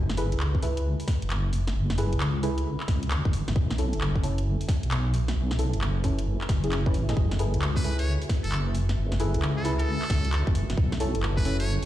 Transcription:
0.00 0.34 F#1 loud
0.00 10.76 F#4 medium
0.00 11.85 B4 medium
0.00 11.85 E5 medium
0.00 11.85 G#5 medium
0.10 snare medium
0.10 closed hi-hat soft
0.17 0.37 E4 medium
0.17 0.37 G#4 medium
0.17 0.37 A4 medium
0.17 0.37 B4 loud
0.17 open hi-hat loud
0.32 0.96 C#2 medium
0.32 closed hi-hat medium
0.40 clap loud
0.55 kick medium
0.63 1.96 E4 medium
0.63 1.96 G#4 medium
0.63 1.96 A4 medium
0.63 1.96 B4 medium
0.63 open hi-hat loud
0.77 closed hi-hat medium
1.00 open hi-hat medium
1.08 kick loud
1.08 snare medium
1.08 open hi-hat loud
1.22 1.73 F#1 loud
1.22 closed hi-hat medium
1.30 clap loud
1.30 closed hi-hat medium
1.53 open hi-hat loud
1.67 snare medium
1.67 closed hi-hat medium
1.75 2.14 F#1 loud
1.90 snare medium
1.90 closed hi-hat soft
1.98 2.13 E4 medium
1.98 2.13 G#4 medium
1.98 2.13 A4 medium
1.98 2.13 B4 loud
1.98 open hi-hat loud
2.13 2.76 C#2 medium
2.13 closed hi-hat medium
2.20 clap loud
2.43 2.58 E4 loud
2.43 2.58 G#4 medium
2.43 2.58 A4 medium
2.43 2.58 B4 loud
2.43 open hi-hat loud
2.58 closed hi-hat medium
2.80 clap medium
2.88 3.21 C#2 loud
2.88 kick loud
2.88 snare medium
2.88 open hi-hat loud
3.03 closed hi-hat medium
3.11 clap loud
3.11 closed hi-hat soft
3.25 3.43 F#1 medium
3.25 kick loud
3.33 open hi-hat loud
3.48 3.54 F#1 loud
3.48 snare medium
3.48 closed hi-hat medium
3.56 3.94 B1 loud
3.56 kick loud
3.70 snare medium
3.70 closed hi-hat soft
3.78 3.98 C#4 medium
3.78 3.98 E4 medium
3.78 3.98 A4 loud
3.78 open hi-hat loud
3.93 4.56 F#1 medium
3.93 closed hi-hat medium
4.01 clap loud
4.16 kick medium
4.23 5.57 C#4 medium
4.23 5.57 E4 medium
4.23 5.57 A4 medium
4.23 open hi-hat loud
4.38 closed hi-hat medium
4.61 open hi-hat medium
4.69 kick loud
4.69 snare medium
4.69 open hi-hat loud
4.83 5.34 B1 loud
4.83 closed hi-hat medium
4.91 clap loud
4.91 closed hi-hat soft
5.14 open hi-hat loud
5.28 snare medium
5.28 closed hi-hat medium
5.36 5.75 B1 loud
5.51 snare medium
5.51 closed hi-hat soft
5.59 5.73 C#4 medium
5.59 5.73 E4 medium
5.59 5.73 A4 loud
5.59 open hi-hat loud
5.73 6.37 F#1 loud
5.73 closed hi-hat medium
5.81 clap loud
6.04 6.19 C#4 loud
6.04 6.19 E4 medium
6.04 6.19 A4 loud
6.04 kick medium
6.04 open hi-hat loud
6.19 closed hi-hat medium
6.41 clap medium
6.49 6.96 F#1 loud
6.49 kick loud
6.49 snare medium
6.49 open hi-hat loud
6.64 6.80 C#4 medium
6.64 6.80 E4 medium
6.64 6.80 G#4 medium
6.64 closed hi-hat medium
6.72 clap loud
6.72 closed hi-hat medium
6.86 6.94 C#4 loud
6.86 6.94 E4 medium
6.86 6.94 B4 loud
6.86 kick loud
6.94 7.14 A1 medium
6.94 open hi-hat medium
7.09 7.37 E4 medium
7.09 7.37 G#4 medium
7.09 7.37 A4 medium
7.09 7.37 D#5 medium
7.09 snare medium
7.09 closed hi-hat medium
7.17 7.55 F#1 medium
7.17 kick loud
7.31 snare medium
7.31 closed hi-hat soft
7.39 7.59 E4 loud
7.39 7.59 G#4 medium
7.39 7.59 A4 medium
7.39 7.59 B4 loud
7.39 open hi-hat loud
7.54 8.17 C#2 loud
7.54 closed hi-hat medium
7.62 clap loud
7.76 7.96 B4 loud
7.76 kick medium
7.84 9.18 E4 medium
7.84 9.18 G#4 medium
7.84 9.18 A4 medium
7.84 9.18 B4 medium
7.84 open hi-hat loud
7.99 8.14 C#5 loud
7.99 closed hi-hat medium
8.22 open hi-hat medium
8.29 kick loud
8.29 snare medium
8.29 open hi-hat loud
8.44 8.95 F#1 loud
8.44 8.59 A4 medium
8.44 closed hi-hat medium
8.52 clap loud
8.52 closed hi-hat medium
8.75 open hi-hat loud
8.89 snare medium
8.89 closed hi-hat medium
8.97 9.36 F#1 loud
9.12 snare medium
9.12 closed hi-hat soft
9.20 9.34 E4 medium
9.20 9.34 G#4 medium
9.20 9.34 A4 medium
9.20 9.34 B4 loud
9.20 open hi-hat loud
9.34 9.98 C#2 loud
9.34 closed hi-hat medium
9.42 clap loud
9.57 9.71 A4 medium
9.65 9.80 E4 loud
9.65 9.79 G#4 medium
9.65 9.79 A4 medium
9.65 9.80 B4 loud
9.65 open hi-hat loud
9.79 10.41 A4 loud
9.79 closed hi-hat medium
10.02 clap medium
10.10 10.43 C#2 loud
10.10 kick loud
10.10 snare medium
10.10 open hi-hat loud
10.25 closed hi-hat medium
10.33 clap loud
10.33 closed hi-hat medium
10.47 10.64 F#1 medium
10.47 kick loud
10.55 open hi-hat loud
10.70 10.76 F#1 loud
10.70 snare medium
10.70 closed hi-hat medium
10.77 11.16 B1 loud
10.77 11.85 F#4 medium
10.77 kick loud
10.92 snare medium
10.92 closed hi-hat soft
11.00 11.20 C#4 loud
11.00 11.20 E4 medium
11.00 11.20 A4 loud
11.00 open hi-hat loud
11.15 11.78 F#1 loud
11.15 closed hi-hat medium
11.23 clap loud
11.37 11.57 B4 loud
11.37 kick medium
11.45 11.85 C#4 medium
11.45 11.85 E4 medium
11.45 11.85 A4 medium
11.45 open hi-hat loud
11.60 11.75 C#5 loud
11.60 closed hi-hat medium

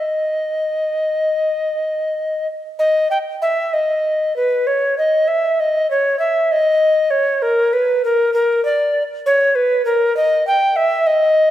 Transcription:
0.00 2.47 D#5 medium
2.79 3.08 D#5 medium
3.11 3.18 G5 medium
3.42 3.75 E5 medium
3.73 4.36 D#5 medium
4.36 4.68 B4 medium
4.67 4.97 C#5 medium
4.98 5.29 D#5 medium
5.28 5.61 E5 medium
5.60 5.90 D#5 medium
5.90 6.18 C#5 medium
6.19 6.53 E5 medium
6.52 7.12 D#5 medium
7.10 7.44 C#5 medium
7.42 7.74 A#4 medium
7.73 8.02 B4 medium
8.04 8.33 A#4 medium
8.34 8.63 A#4 medium
8.65 9.03 D5 medium
9.26 9.57 C#5 loud
9.55 9.85 B4 medium
9.85 10.15 A#4 medium
10.16 10.45 D#5 loud
10.47 10.78 G5 medium
10.76 11.08 E5 medium
11.06 11.51 D#5 medium

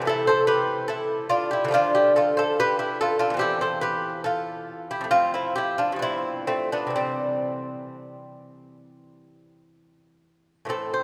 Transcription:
0.00 1.66 C3 medium
0.00 1.64 E3 medium
0.05 1.68 A3 medium
0.05 0.29 E4 loud
0.05 0.27 A4 loud
0.27 0.48 A4 medium
0.27 0.47 C5 loud
0.47 0.88 G4 medium
0.47 0.87 B4 loud
0.88 1.29 E4 medium
0.88 1.30 A4 loud
1.29 1.52 D4 loud
1.29 1.53 F4 loud
1.51 1.73 E4 medium
1.51 1.74 G4 loud
1.64 3.33 D3 loud
1.64 3.36 F3 medium
1.71 1.74 A3 medium
1.71 1.95 D4 loud
1.71 1.96 F4 loud
1.95 2.16 E4 medium
1.95 2.16 G4 loud
2.16 2.37 F4 medium
2.16 2.37 A4 loud
2.37 2.59 A4 medium
2.37 2.59 C5 loud
2.60 2.78 G4 loud
2.60 2.79 B4 loud
2.79 3.00 E4 medium
2.79 3.00 G4 loud
3.01 3.18 F4 medium
3.01 3.22 A4 loud
3.19 3.36 D4 medium
3.19 3.40 F4 loud
3.30 5.00 E2 medium
3.30 5.05 E3 medium
3.37 5.06 C4 medium
3.37 3.61 G4 loud
3.41 3.61 E4 medium
3.61 3.82 A4 medium
3.61 3.81 C5 loud
3.81 4.23 G4 medium
3.81 4.24 B4 loud
4.24 4.87 F4 medium
4.24 4.87 A4 loud
4.91 5.10 E4 medium
4.91 5.13 G4 loud
5.01 5.94 F2 medium
5.01 5.96 A3 medium
5.11 5.33 C4 medium
5.11 5.33 F4 loud
5.34 5.56 C4 medium
5.34 5.57 E4 medium
5.55 5.78 E4 medium
5.55 5.79 G4 loud
5.78 6.01 D4 medium
5.78 6.02 F4 loud
5.92 6.86 G2 medium
5.92 6.90 F3 medium
5.99 6.47 B3 medium
5.99 6.47 E4 loud
6.03 6.46 C4 medium
6.47 6.70 A3 medium
6.47 6.72 C4 loud
6.72 6.95 B3 medium
6.72 6.96 D4 loud
6.87 10.61 C3 medium
6.87 10.63 E3 medium
6.96 10.21 G3 medium
6.96 10.21 C4 loud
10.65 11.03 A2 medium
10.65 11.03 E3 medium
10.65 11.03 C4 medium
10.70 10.92 A4 loud
10.94 11.03 C5 medium

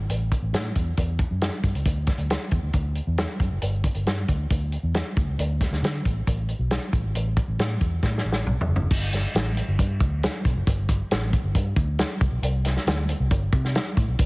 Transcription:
0.10 0.35 A1 medium
0.10 closed hi-hat loud
0.31 kick medium
0.31 closed hi-hat medium
0.42 0.55 A1 medium
0.53 0.70 A2 medium
0.53 snare loud
0.53 closed hi-hat medium
0.75 0.92 E2 medium
0.75 kick medium
0.75 closed hi-hat medium
0.97 1.23 E2 medium
0.97 kick medium
0.97 closed hi-hat medium
1.19 kick medium
1.19 closed hi-hat medium
1.31 1.48 F#2 medium
1.41 snare medium
1.41 closed hi-hat medium
1.64 1.72 G2 medium
1.64 kick medium
1.64 closed hi-hat medium
1.75 1.83 C#2 medium
1.75 closed hi-hat soft
1.85 2.11 D2 medium
1.85 kick medium
1.85 closed hi-hat medium
2.07 kick medium
2.07 snare soft
2.07 closed hi-hat medium
2.18 2.35 D2 medium
2.18 closed hi-hat soft
2.30 snare medium
2.30 closed hi-hat medium
2.51 2.60 E2 medium
2.51 kick medium
2.51 closed hi-hat medium
2.63 2.71 D2 medium
2.73 2.99 D2 medium
2.73 kick medium
2.73 closed hi-hat medium
2.95 closed hi-hat soft
3.07 3.24 E2 medium
3.18 snare loud
3.18 closed hi-hat medium
3.40 3.49 F#2 medium
3.40 kick medium
3.40 closed hi-hat medium
3.51 3.60 F#1 medium
3.62 3.87 G1 medium
3.62 closed hi-hat loud
3.84 kick medium
3.84 closed hi-hat medium
3.94 4.04 G1 medium
3.94 closed hi-hat medium
4.06 4.23 G2 medium
4.06 snare medium
4.06 closed hi-hat medium
4.28 4.45 D2 medium
4.28 kick medium
4.28 closed hi-hat medium
4.50 4.76 D2 medium
4.50 kick medium
4.50 closed hi-hat medium
4.72 closed hi-hat medium
4.83 5.00 E2 medium
4.94 snare medium
4.94 closed hi-hat medium
5.17 5.25 D2 medium
5.17 kick medium
5.17 closed hi-hat medium
5.27 5.36 C#2 medium
5.39 5.64 D2 loud
5.39 closed hi-hat loud
5.61 kick medium
5.61 snare soft
5.61 closed hi-hat medium
5.71 5.80 D2 medium
5.71 snare soft
5.82 5.99 D3 medium
5.82 snare loud
5.82 closed hi-hat medium
6.05 6.22 A1 medium
6.05 kick medium
6.05 closed hi-hat medium
6.27 6.52 A1 medium
6.27 kick medium
6.27 closed hi-hat medium
6.49 closed hi-hat soft
6.59 6.76 B1 medium
6.71 snare loud
6.71 closed hi-hat medium
6.93 7.01 A1 medium
6.93 kick medium
6.93 closed hi-hat medium
7.04 7.12 G#1 medium
7.15 7.40 A1 medium
7.15 closed hi-hat medium
7.37 kick medium
7.37 closed hi-hat medium
7.48 7.56 A1 medium
7.59 7.76 A2 medium
7.59 snare loud
7.59 closed hi-hat medium
7.81 7.98 E2 medium
7.81 kick medium
7.81 closed hi-hat medium
8.03 8.20 A2 medium
8.03 kick medium
8.03 snare soft
8.18 snare soft
8.25 8.42 A1 medium
8.32 snare medium
8.46 8.55 B1 medium
8.46 mid tom medium
8.61 floor tom medium
8.68 8.85 F#1 medium
8.76 floor tom medium
8.91 9.25 G1 medium
8.91 kick loud
8.91 crash medium
9.13 snare soft
9.13 closed hi-hat medium
9.35 9.60 A1 medium
9.35 snare loud
9.35 closed hi-hat medium
9.57 closed hi-hat medium
9.68 9.77 G1 medium
9.79 10.02 G2 medium
9.79 kick medium
9.79 closed hi-hat medium
10.00 10.26 D2 medium
10.00 kick loud
10.00 closed hi-hat medium
10.23 snare loud
10.23 closed hi-hat medium
10.45 10.54 B1 medium
10.45 kick medium
10.45 closed hi-hat medium
10.56 10.64 F#1 medium
10.67 11.01 G1 loud
10.67 kick loud
10.67 closed hi-hat loud
10.89 kick medium
10.89 closed hi-hat medium
11.11 11.36 A1 medium
11.11 snare loud
11.11 closed hi-hat medium
11.33 kick medium
11.33 closed hi-hat medium
11.44 11.52 G1 medium
11.55 11.72 G2 loud
11.55 kick medium
11.55 closed hi-hat medium
11.76 12.02 D2 medium
11.76 kick medium
11.76 closed hi-hat medium
11.99 snare loud
11.99 closed hi-hat medium
12.21 12.30 C2 medium
12.21 kick loud
12.21 closed hi-hat medium
12.32 12.40 B1 medium
12.42 12.76 C2 loud
12.42 closed hi-hat loud
12.65 snare soft
12.65 closed hi-hat medium
12.77 snare soft
12.87 13.12 D2 loud
12.87 snare loud
12.87 closed hi-hat medium
13.09 closed hi-hat medium
13.20 13.28 C2 medium
13.31 13.48 G1 medium
13.31 kick medium
13.31 closed hi-hat medium
13.53 13.78 C3 loud
13.53 kick loud
13.53 closed hi-hat medium
13.65 snare soft
13.75 snare loud
13.75 closed hi-hat medium
13.97 14.05 A2 medium
13.97 kick medium
13.97 closed hi-hat medium
14.08 14.16 B1 medium
14.19 14.26 C2 loud
14.19 kick loud
14.19 closed hi-hat loud

